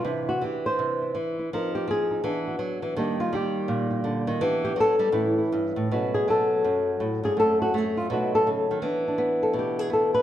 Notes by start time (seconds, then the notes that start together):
0.05 C3 E3 D4 E4
0.29 F#4
0.41 E3 G4
0.66 C5
0.79 C3
1.02 E4
1.15 E3
1.39 E4
1.53 F3 C4 D#4 A#4
1.75 G4
1.88 C4 G#4
2.11 D#4
2.24 E3 B3 D4
2.47 F#4
2.59 F#3
2.82 E3
2.97 D#3 G3 A#3 D4 G4
3.20 F4
3.33 G3 G4
3.68 A#2
3.91 G4
4.04 D3
4.27 D#3
4.41 E3 B3 D4 G4
4.65 G4
4.76 F#3
4.80 A4
4.99 G3
5.12 A2 E3 C#4 E4
5.38 E4
5.52 G2
5.76 A2
5.91 B2 F#3 A3 C#4 F#4
6.14 G#4
6.28 F#3 A4
6.64 F#2
7.00 A2
7.24 G2 G#4
7.37 F#2 A3 C4 A4
7.62 F#4
7.74 A3 G#4
7.97 F4
8.10 B2 F#3 A3 D#4 F#4
8.35 A4
8.47 C#3
8.71 D#3
8.82 E3 B3 D4
9.08 D4
9.18 B3
9.43 A4
9.54 B2
9.59 G4
9.79 G#4
9.90 B3 A4
10.14 B4